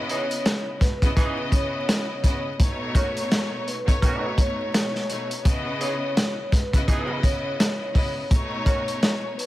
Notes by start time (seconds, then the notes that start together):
Already playing: C#3 B3 E4 D#5
0.09 E3 D#4 G#4 C#5, closed hi-hat
0.31 closed hi-hat
0.46 snare, closed hi-hat
0.81 B4, kick, snare, closed hi-hat
1.02 C#3 B3 E4 D#5, kick, closed hi-hat
1.16 C#3 E3 B3 D#4 E4 G#4 D#5, kick, closed hi-hat
1.52 C#5, kick, closed hi-hat
1.89 snare, closed hi-hat
2.22 C#3 B3 E4 D#5, kick, closed hi-hat
2.58 B2 A3 D#4 C#5, kick, closed hi-hat
2.95 D#3 C#4 F#4 C#5, kick, closed hi-hat
3.17 closed hi-hat
3.32 snare, closed hi-hat
3.67 B4, closed hi-hat
3.85 B2 A3 D#4 C#5, kick
3.89 closed hi-hat
4.00 B2 D#3 A3 C#4 D#4 F#4 C#5, kick, closed hi-hat
4.38 C#5, kick, closed hi-hat
4.74 snare, closed hi-hat
4.95 snare
5.09 B2 A3 D#4 C#5, closed hi-hat
5.31 closed hi-hat
5.42 C#3 B3 E4 D#5, kick, closed hi-hat
5.80 E3 D#4 G#4 C#5, closed hi-hat
6.17 snare, closed hi-hat
6.52 B4, kick, snare, closed hi-hat
6.73 C#3 B3 E4 D#5, kick, closed hi-hat
6.88 C#3 E3 B3 D#4 E4 G#4 D#5, kick, closed hi-hat
7.23 C#5, kick, closed hi-hat
7.60 snare, closed hi-hat
7.94 C#3 B3 E4 D#5, kick, open hi-hat
8.29 B2 A3 D#4 C#5, kick, closed hi-hat
8.66 D#3 C#4 F#4 C#5, kick, closed hi-hat
8.88 closed hi-hat
9.03 snare, closed hi-hat
9.38 B4, closed hi-hat